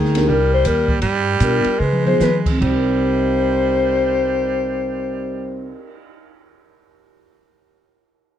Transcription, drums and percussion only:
0.05 snare soft
0.15 snare soft
0.15 ride medium
0.28 kick soft
0.65 kick soft
0.65 hi-hat pedal soft
0.65 ride medium
0.88 kick medium
1.02 kick soft
1.02 ride medium
1.40 kick soft
1.40 hi-hat pedal medium
1.40 ride medium
1.64 ride soft
1.93 mid tom medium
2.07 mid tom medium
2.20 snare medium
2.20 hi-hat pedal medium
2.46 kick medium
2.46 crash medium
2.62 kick medium
2.62 crash medium
2.88 cymbal swell soft

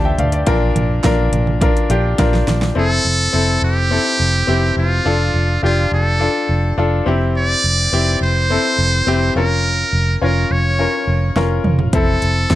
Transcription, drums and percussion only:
0.18 closed hi-hat medium
0.18 floor tom medium
0.32 closed hi-hat soft
0.47 kick loud
0.47 closed hi-hat medium
0.76 closed hi-hat medium
0.76 floor tom medium
1.03 kick loud
1.03 snare loud
1.03 clap medium
1.03 closed hi-hat medium
1.33 closed hi-hat medium
1.33 floor tom medium
1.47 floor tom medium
1.61 kick loud
1.61 closed hi-hat loud
1.77 closed hi-hat soft
1.90 closed hi-hat medium
2.18 kick loud
2.18 snare medium
2.18 clap medium
2.18 closed hi-hat loud
2.34 snare medium
2.48 snare medium
2.48 closed hi-hat medium
2.62 snare medium
11.36 snare medium
11.64 mid tom medium
11.79 floor tom medium
11.93 kick loud
11.93 closed hi-hat medium
12.22 closed hi-hat medium
12.50 kick loud
12.50 snare loud
12.50 closed hi-hat medium

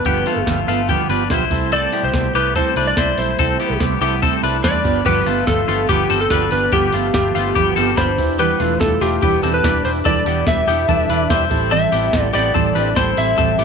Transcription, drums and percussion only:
0.05 kick loud
0.05 closed hi-hat medium
0.26 open hi-hat medium
0.47 kick loud
0.47 snare loud
0.47 closed hi-hat medium
0.69 open hi-hat medium
0.89 kick loud
0.89 closed hi-hat medium
1.10 open hi-hat medium
1.30 kick loud
1.30 snare loud
1.30 closed hi-hat medium
1.51 kick loud
1.51 open hi-hat medium
1.72 closed hi-hat medium
1.93 open hi-hat medium
2.14 kick loud
2.14 snare loud
2.14 closed hi-hat medium
2.35 open hi-hat medium
2.56 kick loud
2.56 closed hi-hat medium
2.76 open hi-hat medium
2.97 kick loud
2.97 snare loud
2.97 closed hi-hat medium
3.18 open hi-hat medium
3.39 kick loud
3.39 closed hi-hat medium
3.60 open hi-hat medium
3.80 kick loud
3.80 snare loud
3.80 closed hi-hat medium
4.02 open hi-hat medium
4.23 kick loud
4.23 closed hi-hat medium
4.44 open hi-hat medium
4.64 kick loud
4.64 snare loud
4.64 closed hi-hat medium
4.85 kick loud
4.85 open hi-hat medium
5.06 kick loud
5.06 closed hi-hat medium
5.06 crash medium
5.26 open hi-hat medium
5.47 kick loud
5.47 snare loud
5.47 closed hi-hat medium
5.69 open hi-hat medium
5.89 kick loud
5.89 closed hi-hat medium
6.10 open hi-hat medium
6.30 kick loud
6.30 snare loud
6.30 closed hi-hat medium
6.51 open hi-hat medium
6.72 kick loud
6.72 closed hi-hat medium
6.93 open hi-hat medium
7.14 kick loud
7.14 snare loud
7.14 closed hi-hat medium
7.36 open hi-hat medium
7.56 kick loud
7.56 closed hi-hat medium
7.77 open hi-hat medium
7.97 kick loud
7.97 snare loud
7.97 closed hi-hat medium
8.18 kick loud
8.18 open hi-hat medium
8.39 closed hi-hat medium
8.60 open hi-hat medium
8.81 kick loud
8.81 snare loud
8.81 closed hi-hat medium
9.02 open hi-hat medium
9.23 kick loud
9.23 closed hi-hat medium
9.44 open hi-hat medium
9.64 kick loud
9.64 snare loud
9.64 closed hi-hat medium
9.85 open hi-hat medium
10.06 kick loud
10.06 closed hi-hat medium
10.26 open hi-hat medium
10.47 kick loud
10.47 snare loud
10.47 closed hi-hat medium
10.69 open hi-hat medium
10.89 kick loud
10.89 closed hi-hat medium
11.10 open hi-hat medium
11.30 kick loud
11.30 snare loud
11.30 closed hi-hat medium
11.51 kick loud
11.51 open hi-hat medium
11.72 closed hi-hat medium
11.93 open hi-hat medium
12.13 kick loud
12.13 snare loud
12.13 closed hi-hat medium
12.35 open hi-hat medium
12.55 kick loud
12.55 closed hi-hat medium
12.76 open hi-hat medium
12.96 kick loud
12.96 snare loud
12.96 closed hi-hat medium
13.17 open hi-hat medium
13.38 kick loud
13.38 closed hi-hat medium
13.59 open hi-hat medium

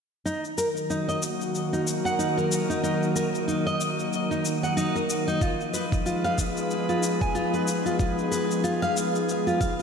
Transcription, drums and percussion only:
0.26 shaker soft
0.45 shaker soft
0.58 shaker medium
0.77 shaker soft
0.90 shaker soft
1.09 shaker soft
1.22 shaker medium
1.41 shaker soft
1.55 shaker soft
1.74 shaker soft
1.87 shaker medium
2.06 shaker soft
2.20 shaker soft
2.38 shaker soft
2.52 shaker medium
2.70 shaker soft
2.84 shaker soft
3.03 shaker soft
3.16 shaker medium
3.35 shaker soft
3.48 shaker soft
3.67 shaker soft
3.81 shaker medium
3.99 shaker soft
4.13 shaker soft
4.32 shaker soft
4.45 shaker medium
4.64 shaker soft
4.77 shaker soft
4.96 shaker soft
5.10 shaker medium
5.28 shaker soft
5.41 kick loud
5.41 shaker soft
5.61 shaker soft
5.74 shaker medium
5.92 kick medium
5.92 shaker soft
6.06 shaker soft
6.25 shaker soft
6.38 kick medium
6.38 shaker medium
6.57 shaker soft
6.71 shaker soft
6.89 shaker soft
7.03 shaker medium
7.21 kick loud
7.21 shaker soft
7.35 shaker soft
7.54 shaker soft
7.68 shaker medium
7.86 shaker soft
8.00 kick loud
8.00 shaker soft
8.19 shaker soft
8.32 shaker medium
8.51 shaker soft
8.65 shaker soft
8.83 shaker soft
8.97 shaker medium
9.15 shaker soft
9.29 shaker soft
9.48 shaker soft
9.61 kick loud
9.61 shaker medium

